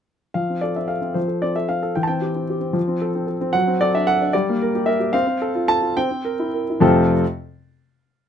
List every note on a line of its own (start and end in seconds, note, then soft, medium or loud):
0.34 1.13 F3 soft
0.34 0.62 F5 medium
0.50 0.71 C4 soft
0.61 0.85 A4 soft
0.61 0.76 D5 medium
0.76 0.98 C4 soft
0.76 0.90 E5 soft
0.88 1.11 A4 soft
0.88 1.15 F5 medium
1.01 1.24 C4 soft
1.14 1.94 F3 soft
1.14 1.42 C5 medium
1.28 1.50 A4 soft
1.42 1.64 C4 soft
1.42 1.56 D5 medium
1.56 1.78 A4 soft
1.56 1.70 E5 medium
1.69 1.91 C4 soft
1.69 1.96 F5 medium
1.83 1.96 A4 soft
1.95 2.74 E3 soft
1.95 2.03 G5 medium
2.03 2.11 A5 medium
2.08 2.31 C4 soft
2.08 3.27 G5 medium
2.22 2.44 G4 soft
2.35 2.57 C4 soft
2.50 2.71 G4 soft
2.61 2.75 C4 soft
2.73 3.50 F3 medium
2.88 3.09 C4 soft
3.01 3.23 A4 soft
3.15 3.36 C4 medium
3.27 3.49 A4 soft
3.41 3.54 C4 medium
3.53 4.31 F#3 medium
3.53 3.80 F#5 medium
3.67 3.88 C4 medium
3.81 4.02 A4 medium
3.81 3.94 D5 medium
3.95 4.15 D4 medium
3.95 4.07 E5 medium
4.07 4.29 A4 medium
4.07 4.33 F#5 medium
4.22 4.34 D4 medium
4.33 5.12 G3 medium
4.33 4.87 D5 medium
4.49 4.69 A#3 medium
4.62 4.82 A#4 medium
4.75 4.96 G4 medium
4.86 5.09 A#4 medium
4.86 5.13 E5 medium
5.00 5.13 G4 medium
5.13 5.26 C4 medium
5.13 5.68 F5 medium
5.27 5.49 C4 medium
5.42 5.63 A4 medium
5.55 5.77 F4 medium
5.68 5.91 A4 medium
5.68 5.96 A5 medium
5.82 5.96 F4 soft
5.97 6.10 C4 medium
5.97 6.82 G5 medium
6.11 6.33 C4 medium
6.25 6.48 A#4 medium
6.39 6.63 E4 soft
6.54 6.77 A#4 soft
6.70 6.83 E4 soft
6.80 7.12 F2 medium
6.80 7.13 C3 medium
6.80 7.13 A3 medium
6.80 7.13 C4 medium
6.80 7.13 F4 medium
6.80 7.13 A4 medium
6.80 7.13 A5 medium